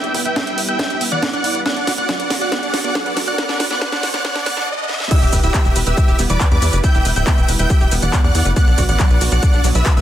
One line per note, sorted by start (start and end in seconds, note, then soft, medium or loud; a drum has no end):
0.00 1.62 G3 medium
0.00 4.64 B3 medium
0.00 1.62 E4 medium
0.00 0.07 G4 loud
0.00 1.62 B4 medium
0.00 0.20 E5 medium
0.00 0.20 G5 loud
0.00 0.20 G6 loud
0.00 closed hi-hat soft
0.00 riser medium
0.14 0.21 B4 medium
0.14 kick medium
0.14 open hi-hat loud
0.25 0.28 E4 medium
0.25 0.61 E5 medium
0.25 0.61 G5 medium
0.25 0.61 G6 medium
0.25 closed hi-hat soft
0.36 0.39 B3 medium
0.36 kick loud
0.36 snare medium
0.36 closed hi-hat medium
0.47 0.54 E5 medium
0.47 closed hi-hat medium
0.58 0.62 B4 medium
0.58 open hi-hat loud
0.68 0.73 B4 medium
0.68 1.04 E5 medium
0.68 1.04 G5 loud
0.68 1.04 G6 loud
0.68 closed hi-hat medium
0.79 0.82 G4 medium
0.79 kick loud
0.79 snare medium
0.79 closed hi-hat medium
0.90 0.93 G4 loud
0.90 closed hi-hat medium
1.01 1.05 B3 loud
1.01 open hi-hat loud
1.12 1.16 E3 medium
1.12 1.30 D5 medium
1.12 1.30 F#5 medium
1.12 1.30 F#6 medium
1.12 closed hi-hat medium
1.22 1.25 B3 medium
1.22 kick loud
1.22 snare medium
1.22 closed hi-hat medium
1.33 1.38 D4 medium
1.33 1.60 D5 medium
1.33 1.60 F#5 medium
1.33 1.60 F#6 medium
1.33 closed hi-hat medium
1.44 1.49 E4 medium
1.44 open hi-hat loud
1.55 1.59 B4 medium
1.55 closed hi-hat medium
1.66 1.68 B3 medium
1.66 4.65 D4 medium
1.66 4.65 F#4 medium
1.66 1.92 D5 medium
1.66 4.65 D5 loud
1.66 1.92 F#5 medium
1.66 1.92 F#6 medium
1.66 kick loud
1.66 snare medium
1.66 closed hi-hat medium
1.76 1.79 D4 medium
1.76 closed hi-hat soft
1.87 1.94 F#4 medium
1.87 kick medium
1.87 snare medium
1.87 open hi-hat loud
1.98 2.01 B3 medium
1.98 2.34 D5 medium
1.98 2.34 F#5 medium
1.98 2.34 F#6 medium
1.98 closed hi-hat soft
2.09 2.12 F#3 medium
2.09 kick loud
2.09 snare medium
2.09 closed hi-hat medium
2.20 2.26 B4 medium
2.20 closed hi-hat medium
2.30 2.35 F#4 medium
2.30 snare medium
2.30 open hi-hat loud
2.41 2.46 F#4 medium
2.41 2.50 D5 medium
2.41 2.50 F#5 medium
2.41 2.50 F#6 medium
2.41 closed hi-hat medium
2.52 2.55 B3 loud
2.52 2.79 D5 medium
2.52 2.79 F#5 medium
2.52 2.79 F#6 medium
2.52 kick loud
2.52 snare medium
2.52 closed hi-hat medium
2.63 2.66 D4 loud
2.63 closed hi-hat soft
2.74 2.80 F#4 medium
2.74 snare medium
2.74 open hi-hat loud
2.84 2.87 B3 medium
2.84 3.20 D5 medium
2.84 3.20 F#5 loud
2.84 3.20 F#6 medium
2.84 closed hi-hat medium
2.95 2.98 F#3 medium
2.95 kick loud
2.95 snare medium
2.95 closed hi-hat medium
3.06 3.13 B4 medium
3.06 closed hi-hat soft
3.17 3.21 F#4 medium
3.17 snare medium
3.17 open hi-hat loud
3.27 3.32 F#4 medium
3.27 3.37 D5 medium
3.27 3.37 F#5 medium
3.27 3.37 F#6 medium
3.27 closed hi-hat medium
3.38 3.41 B3 loud
3.38 3.65 D5 medium
3.38 3.65 F#5 loud
3.38 3.65 F#6 loud
3.38 kick loud
3.38 snare medium
3.38 closed hi-hat medium
3.49 3.52 D4 loud
3.49 snare medium
3.49 closed hi-hat soft
3.60 3.67 F#4 medium
3.60 kick medium
3.60 snare medium
3.60 open hi-hat loud
3.70 3.73 B3 medium
3.70 3.80 D5 medium
3.70 3.80 F#5 medium
3.70 3.80 F#6 medium
3.70 snare medium
3.70 closed hi-hat soft
3.81 3.84 B3 loud
3.81 4.08 D5 medium
3.81 4.08 F#5 loud
3.81 4.08 F#6 loud
3.81 kick loud
3.81 snare medium
3.81 closed hi-hat medium
3.92 3.95 D4 loud
3.92 snare medium
3.92 closed hi-hat medium
4.03 4.10 F#4 medium
4.03 snare loud
4.03 open hi-hat loud
4.14 4.17 B3 medium
4.14 4.23 D5 medium
4.14 4.23 F#5 medium
4.14 4.23 F#6 medium
4.14 snare medium
4.14 closed hi-hat medium
4.24 4.27 B3 loud
4.24 4.45 D5 medium
4.24 4.45 F#5 loud
4.24 4.45 F#6 medium
4.24 kick loud
4.24 snare loud
4.24 closed hi-hat medium
4.35 4.38 D4 loud
4.35 snare medium
4.35 closed hi-hat medium
4.46 4.49 B3 loud
4.46 4.66 D5 medium
4.46 4.66 F#5 loud
4.46 4.66 F#6 loud
4.46 snare loud
4.46 open hi-hat loud
4.57 4.60 D4 loud
4.57 snare medium
4.57 closed hi-hat medium
4.89 snare medium
5.00 snare medium
5.11 8.53 G3 medium
5.11 10.01 B3 medium
5.11 8.53 E4 medium
5.11 5.14 E4 loud
5.11 5.38 G4 medium
5.11 8.53 B4 loud
5.11 5.38 E5 loud
5.11 5.38 E6 loud
5.11 kick loud
5.11 closed hi-hat medium
5.11 crash loud
5.11 shaker soft
5.22 5.30 E1 medium
5.22 5.25 G4 loud
5.22 shaker soft
5.33 5.40 E1 loud
5.33 5.39 B4 medium
5.33 kick medium
5.33 open hi-hat loud
5.33 shaker medium
5.43 5.51 D1 medium
5.43 5.46 E4 medium
5.43 5.79 G4 medium
5.43 5.79 E5 loud
5.43 5.79 E6 loud
5.43 closed hi-hat medium
5.43 shaker soft
5.54 5.57 B3 medium
5.54 kick loud
5.54 clap loud
5.54 closed hi-hat medium
5.54 shaker soft
5.65 5.73 E1 medium
5.65 5.72 E5 medium
5.65 shaker soft
5.76 5.83 E1 loud
5.76 5.80 B4 medium
5.76 open hi-hat loud
5.76 shaker medium
5.87 5.94 E1 medium
5.87 6.22 G4 medium
5.87 5.91 B4 medium
5.87 6.22 E5 loud
5.87 6.22 E6 medium
5.87 closed hi-hat medium
5.87 shaker soft
5.97 6.00 G4 medium
5.97 kick loud
5.97 closed hi-hat medium
5.97 shaker soft
6.08 6.16 E1 medium
6.08 6.11 G4 loud
6.08 shaker soft
6.19 6.27 E1 loud
6.19 6.23 B3 loud
6.19 open hi-hat loud
6.19 shaker medium
6.30 6.38 E1 loud
6.30 6.34 E3 medium
6.30 6.48 B4 medium
6.30 6.48 D5 loud
6.30 6.48 D6 medium
6.30 closed hi-hat medium
6.30 shaker soft
6.41 6.43 B3 medium
6.41 kick loud
6.41 clap loud
6.41 closed hi-hat medium
6.41 shaker soft
6.51 6.59 E2 medium
6.51 6.56 D4 medium
6.51 6.78 B4 medium
6.51 6.78 D5 loud
6.51 6.78 D6 loud
6.51 shaker soft
6.62 6.70 E2 loud
6.62 6.67 E4 medium
6.62 open hi-hat loud
6.62 shaker medium
6.73 6.81 F#1 medium
6.73 6.77 B4 medium
6.73 closed hi-hat medium
6.73 shaker soft
6.84 6.86 E4 loud
6.84 7.11 E5 medium
6.84 7.11 G5 loud
6.84 7.11 G6 loud
6.84 kick loud
6.84 closed hi-hat medium
6.84 shaker soft
6.94 7.02 E1 medium
6.94 6.97 G4 loud
6.94 shaker soft
7.05 7.13 E1 loud
7.05 7.12 B4 medium
7.05 open hi-hat loud
7.05 shaker medium
7.16 7.24 D1 medium
7.16 7.19 E4 medium
7.16 7.52 E5 medium
7.16 7.52 G5 loud
7.16 7.52 G6 loud
7.16 closed hi-hat medium
7.16 shaker soft
7.27 7.30 B3 medium
7.27 kick loud
7.27 clap loud
7.27 closed hi-hat medium
7.27 shaker soft
7.38 7.45 E1 medium
7.38 7.44 E5 medium
7.38 shaker soft
7.48 7.56 E1 loud
7.48 7.53 B4 medium
7.48 open hi-hat loud
7.48 shaker medium
7.59 7.67 E1 medium
7.59 7.64 B4 medium
7.59 7.95 E5 medium
7.59 7.95 G5 loud
7.59 7.95 G6 loud
7.59 closed hi-hat medium
7.59 shaker soft
7.70 7.73 G4 medium
7.70 kick loud
7.70 closed hi-hat medium
7.70 shaker soft
7.81 7.89 E1 medium
7.81 7.84 G4 loud
7.81 shaker soft
7.92 7.99 E1 loud
7.92 7.96 B3 loud
7.92 open hi-hat loud
7.92 shaker medium
8.02 8.10 E1 medium
8.02 8.07 E3 medium
8.02 8.20 D5 medium
8.02 8.20 F#5 medium
8.02 8.20 F#6 medium
8.02 closed hi-hat medium
8.02 shaker soft
8.13 8.16 B3 medium
8.13 kick loud
8.13 clap loud
8.13 closed hi-hat medium
8.13 shaker soft
8.24 8.32 E2 medium
8.24 8.29 D4 medium
8.24 8.51 D5 medium
8.24 8.51 F#5 loud
8.24 8.51 F#6 loud
8.24 shaker soft
8.35 8.42 E2 loud
8.35 8.39 E4 medium
8.35 open hi-hat loud
8.35 shaker medium
8.45 8.53 F#1 loud
8.45 8.50 B4 medium
8.45 closed hi-hat medium
8.45 shaker soft
8.56 8.59 B3 loud
8.56 10.01 D4 medium
8.56 10.01 F#4 medium
8.56 10.01 D5 loud
8.56 8.83 D5 medium
8.56 8.83 F#5 loud
8.56 8.83 F#6 loud
8.56 kick loud
8.56 closed hi-hat medium
8.56 shaker soft
8.67 8.75 B1 medium
8.67 8.70 D4 loud
8.67 shaker soft
8.78 8.86 B1 loud
8.78 8.85 F#4 medium
8.78 kick medium
8.78 open hi-hat loud
8.78 shaker medium
8.89 8.96 A1 medium
8.89 8.92 B3 medium
8.89 9.24 D5 medium
8.89 9.24 F#5 medium
8.89 9.24 F#6 medium
8.89 closed hi-hat medium
8.89 shaker soft
9.00 9.02 F#3 medium
9.00 kick loud
9.00 clap loud
9.00 closed hi-hat medium
9.00 shaker soft
9.10 9.18 B1 medium
9.10 9.17 B4 medium
9.10 shaker soft
9.21 9.29 B1 loud
9.21 9.26 F#4 medium
9.21 open hi-hat loud
9.21 shaker medium
9.32 9.40 B1 medium
9.32 9.37 F#4 medium
9.32 9.68 D5 medium
9.32 9.68 F#5 loud
9.32 9.68 F#6 loud
9.32 shaker soft
9.43 9.45 D4 medium
9.43 kick loud
9.43 closed hi-hat medium
9.43 shaker soft
9.53 9.61 B1 medium
9.53 9.56 D4 loud
9.53 shaker soft
9.64 9.72 B1 loud
9.64 9.69 F#3 loud
9.64 open hi-hat loud
9.64 shaker medium
9.75 9.83 B1 medium
9.75 9.80 B2 medium
9.75 9.93 B4 medium
9.75 9.93 E5 medium
9.75 9.93 E6 medium
9.75 closed hi-hat medium
9.75 shaker soft
9.86 9.89 F#3 medium
9.86 kick loud
9.86 clap loud
9.86 closed hi-hat medium
9.86 shaker soft
9.97 10.01 F#1 medium
9.97 10.01 A3 medium
9.97 10.01 B4 medium
9.97 10.01 E5 loud
9.97 10.01 E6 loud
9.97 shaker soft